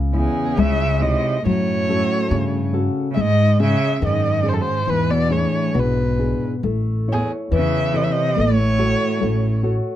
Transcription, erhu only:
0, 0, Header, 1, 2, 480
1, 0, Start_track
1, 0, Tempo, 886263
1, 785, Time_signature, 2, 2, 24, 8
1, 785, Tempo, 857143
1, 2705, Tempo, 879765
1, 4145, Tempo, 851064
1, 5522, End_track
2, 0, Start_track
2, 0, Title_t, "Erhu"
2, 0, Program_c, 0, 110
2, 85, Note_on_c, 0, 68, 76
2, 318, Note_on_c, 0, 76, 90
2, 327, Note_off_c, 0, 68, 0
2, 550, Note_on_c, 0, 75, 83
2, 558, Note_off_c, 0, 76, 0
2, 787, Note_off_c, 0, 75, 0
2, 796, Note_on_c, 0, 73, 91
2, 1490, Note_off_c, 0, 73, 0
2, 1731, Note_on_c, 0, 76, 69
2, 1770, Note_on_c, 0, 75, 108
2, 1779, Note_off_c, 0, 76, 0
2, 2001, Note_off_c, 0, 75, 0
2, 2004, Note_on_c, 0, 76, 90
2, 2219, Note_off_c, 0, 76, 0
2, 2246, Note_on_c, 0, 75, 83
2, 2485, Note_on_c, 0, 72, 81
2, 2493, Note_off_c, 0, 75, 0
2, 2513, Note_on_c, 0, 69, 70
2, 2522, Note_off_c, 0, 72, 0
2, 2556, Note_on_c, 0, 72, 83
2, 2564, Note_off_c, 0, 69, 0
2, 2714, Note_on_c, 0, 71, 89
2, 2722, Note_off_c, 0, 72, 0
2, 2828, Note_on_c, 0, 74, 85
2, 2836, Note_off_c, 0, 71, 0
2, 2946, Note_on_c, 0, 73, 73
2, 2955, Note_off_c, 0, 74, 0
2, 3202, Note_on_c, 0, 71, 67
2, 3211, Note_off_c, 0, 73, 0
2, 3556, Note_off_c, 0, 71, 0
2, 3931, Note_on_c, 0, 68, 76
2, 4032, Note_off_c, 0, 68, 0
2, 4160, Note_on_c, 0, 76, 88
2, 4398, Note_on_c, 0, 75, 87
2, 4406, Note_off_c, 0, 76, 0
2, 4437, Note_on_c, 0, 76, 75
2, 4446, Note_off_c, 0, 75, 0
2, 4485, Note_on_c, 0, 75, 89
2, 4493, Note_off_c, 0, 76, 0
2, 4641, Note_on_c, 0, 73, 93
2, 4650, Note_off_c, 0, 75, 0
2, 5353, Note_off_c, 0, 73, 0
2, 5522, End_track
0, 0, End_of_file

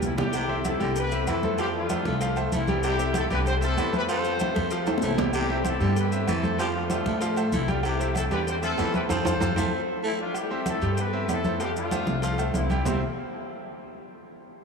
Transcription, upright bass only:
0, 0, Header, 1, 2, 480
1, 0, Start_track
1, 0, Key_signature, 0, "major"
1, 0, Tempo, 313316
1, 515, Time_signature, 4, 2, 24, 8
1, 22432, End_track
2, 0, Start_track
2, 0, Title_t, "Upright bass"
2, 0, Program_c, 0, 32
2, 31, Note_on_c, 0, 36, 83
2, 1147, Note_off_c, 0, 36, 0
2, 1240, Note_on_c, 0, 36, 97
2, 1906, Note_off_c, 0, 36, 0
2, 1951, Note_on_c, 0, 41, 83
2, 3065, Note_off_c, 0, 41, 0
2, 3143, Note_on_c, 0, 36, 103
2, 3815, Note_off_c, 0, 36, 0
2, 3861, Note_on_c, 0, 36, 87
2, 4977, Note_off_c, 0, 36, 0
2, 5064, Note_on_c, 0, 36, 98
2, 5733, Note_off_c, 0, 36, 0
2, 5778, Note_on_c, 0, 41, 86
2, 6893, Note_off_c, 0, 41, 0
2, 6982, Note_on_c, 0, 41, 100
2, 7650, Note_off_c, 0, 41, 0
2, 7704, Note_on_c, 0, 36, 91
2, 8815, Note_off_c, 0, 36, 0
2, 8891, Note_on_c, 0, 43, 99
2, 9562, Note_off_c, 0, 43, 0
2, 9613, Note_on_c, 0, 41, 96
2, 10728, Note_off_c, 0, 41, 0
2, 10813, Note_on_c, 0, 45, 98
2, 11482, Note_off_c, 0, 45, 0
2, 11521, Note_on_c, 0, 36, 102
2, 12641, Note_off_c, 0, 36, 0
2, 12726, Note_on_c, 0, 40, 94
2, 13398, Note_off_c, 0, 40, 0
2, 13461, Note_on_c, 0, 41, 98
2, 13903, Note_off_c, 0, 41, 0
2, 13941, Note_on_c, 0, 41, 99
2, 14116, Note_off_c, 0, 41, 0
2, 14181, Note_on_c, 0, 41, 102
2, 14355, Note_off_c, 0, 41, 0
2, 14418, Note_on_c, 0, 41, 103
2, 14594, Note_off_c, 0, 41, 0
2, 14654, Note_on_c, 0, 41, 98
2, 14832, Note_off_c, 0, 41, 0
2, 16571, Note_on_c, 0, 43, 97
2, 17243, Note_off_c, 0, 43, 0
2, 17288, Note_on_c, 0, 41, 92
2, 18409, Note_off_c, 0, 41, 0
2, 18499, Note_on_c, 0, 36, 99
2, 19169, Note_off_c, 0, 36, 0
2, 19213, Note_on_c, 0, 36, 95
2, 19641, Note_off_c, 0, 36, 0
2, 19703, Note_on_c, 0, 36, 101
2, 19926, Note_off_c, 0, 36, 0
2, 22432, End_track
0, 0, End_of_file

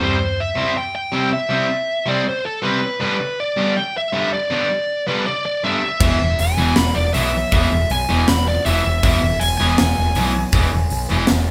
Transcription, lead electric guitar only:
0, 0, Header, 1, 2, 480
1, 0, Start_track
1, 0, Tempo, 375940
1, 9, Time_signature, 4, 2, 24, 8
1, 14695, End_track
2, 0, Start_track
2, 0, Title_t, "Lead electric guitar"
2, 0, Program_c, 0, 29
2, 44, Note_on_c, 0, 72, 85
2, 515, Note_on_c, 0, 76, 85
2, 520, Note_off_c, 0, 72, 0
2, 984, Note_off_c, 0, 76, 0
2, 989, Note_on_c, 0, 79, 90
2, 1205, Note_off_c, 0, 79, 0
2, 1220, Note_on_c, 0, 79, 94
2, 1695, Note_off_c, 0, 79, 0
2, 1700, Note_on_c, 0, 76, 91
2, 2657, Note_on_c, 0, 74, 79
2, 2683, Note_off_c, 0, 76, 0
2, 2900, Note_off_c, 0, 74, 0
2, 2919, Note_on_c, 0, 72, 88
2, 3125, Note_on_c, 0, 69, 78
2, 3128, Note_off_c, 0, 72, 0
2, 3367, Note_off_c, 0, 69, 0
2, 3372, Note_on_c, 0, 71, 85
2, 3829, Note_off_c, 0, 71, 0
2, 3845, Note_on_c, 0, 71, 88
2, 4341, Note_on_c, 0, 74, 93
2, 4342, Note_off_c, 0, 71, 0
2, 4810, Note_on_c, 0, 79, 93
2, 4830, Note_off_c, 0, 74, 0
2, 5034, Note_off_c, 0, 79, 0
2, 5075, Note_on_c, 0, 76, 99
2, 5527, Note_off_c, 0, 76, 0
2, 5532, Note_on_c, 0, 74, 99
2, 6475, Note_off_c, 0, 74, 0
2, 6481, Note_on_c, 0, 71, 86
2, 6715, Note_off_c, 0, 71, 0
2, 6715, Note_on_c, 0, 74, 86
2, 6950, Note_off_c, 0, 74, 0
2, 6966, Note_on_c, 0, 74, 94
2, 7203, Note_off_c, 0, 74, 0
2, 7203, Note_on_c, 0, 76, 97
2, 7660, Note_off_c, 0, 76, 0
2, 7675, Note_on_c, 0, 76, 94
2, 8168, Note_on_c, 0, 80, 102
2, 8178, Note_off_c, 0, 76, 0
2, 8634, Note_on_c, 0, 83, 102
2, 8665, Note_off_c, 0, 80, 0
2, 8870, Note_on_c, 0, 74, 89
2, 8891, Note_off_c, 0, 83, 0
2, 9106, Note_off_c, 0, 74, 0
2, 9111, Note_on_c, 0, 76, 93
2, 9590, Note_off_c, 0, 76, 0
2, 9605, Note_on_c, 0, 76, 102
2, 10101, Note_on_c, 0, 80, 102
2, 10103, Note_off_c, 0, 76, 0
2, 10543, Note_off_c, 0, 80, 0
2, 10580, Note_on_c, 0, 83, 98
2, 10800, Note_off_c, 0, 83, 0
2, 10829, Note_on_c, 0, 74, 96
2, 11042, Note_off_c, 0, 74, 0
2, 11042, Note_on_c, 0, 76, 89
2, 11524, Note_off_c, 0, 76, 0
2, 11539, Note_on_c, 0, 76, 96
2, 11997, Note_on_c, 0, 80, 96
2, 12029, Note_off_c, 0, 76, 0
2, 12210, Note_off_c, 0, 80, 0
2, 12226, Note_on_c, 0, 80, 91
2, 14695, Note_off_c, 0, 80, 0
2, 14695, End_track
0, 0, End_of_file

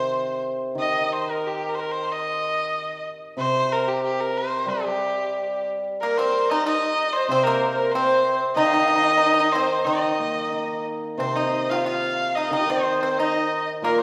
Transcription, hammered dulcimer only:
0, 0, Header, 1, 2, 480
1, 0, Start_track
1, 0, Tempo, 666667
1, 567, Time_signature, 2, 2, 24, 8
1, 1524, Tempo, 640342
1, 3444, Tempo, 663717
1, 4884, Tempo, 639659
1, 7284, Tempo, 661521
1, 10302, End_track
2, 0, Start_track
2, 0, Title_t, "Hammered dulcimer"
2, 0, Program_c, 0, 15
2, 0, Note_on_c, 0, 48, 48
2, 0, Note_on_c, 0, 51, 58
2, 73, Note_off_c, 0, 51, 0
2, 540, Note_on_c, 0, 51, 48
2, 554, Note_off_c, 0, 48, 0
2, 1988, Note_off_c, 0, 51, 0
2, 2461, Note_on_c, 0, 48, 53
2, 3429, Note_on_c, 0, 55, 55
2, 3916, Note_off_c, 0, 48, 0
2, 4876, Note_off_c, 0, 55, 0
2, 5344, Note_on_c, 0, 48, 57
2, 6302, Note_on_c, 0, 51, 64
2, 6307, Note_off_c, 0, 48, 0
2, 7259, Note_off_c, 0, 51, 0
2, 7268, Note_on_c, 0, 51, 51
2, 7520, Note_on_c, 0, 58, 38
2, 7754, Note_on_c, 0, 63, 39
2, 8233, Note_on_c, 0, 48, 53
2, 8492, Note_off_c, 0, 58, 0
2, 8729, Note_off_c, 0, 51, 0
2, 8734, Note_off_c, 0, 63, 0
2, 9202, Note_on_c, 0, 51, 56
2, 9213, Note_off_c, 0, 48, 0
2, 10154, Note_on_c, 0, 46, 61
2, 10302, Note_off_c, 0, 46, 0
2, 10302, Note_off_c, 0, 51, 0
2, 10302, End_track
0, 0, End_of_file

